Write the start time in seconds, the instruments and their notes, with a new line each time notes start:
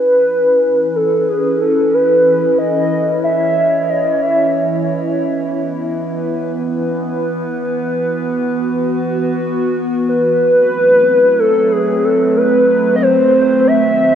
Already playing: ambient pad E3 C#4 E4 B4, soft synth lead B4
0.96 soft synth lead A4
1.28 soft synth lead G#4
1.61 soft synth lead A4
1.93 soft synth lead B4
2.58 ambient pad C#5, soft synth lead D#5
3.24 soft synth lead E5
3.89 soft synth lead D#5
4.22 soft synth lead E5
5.19 ambient pad B3 B4
7.80 ambient pad F#4
10.09 soft synth lead B4
10.41 ambient pad F#3 A3 C4 E4
11.39 soft synth lead A4
11.72 soft synth lead G#4
12.04 soft synth lead A4
12.37 soft synth lead B4
12.96 soft synth lead D#5
13.02 ambient pad D#3, soft synth lead C5
13.67 soft synth lead E5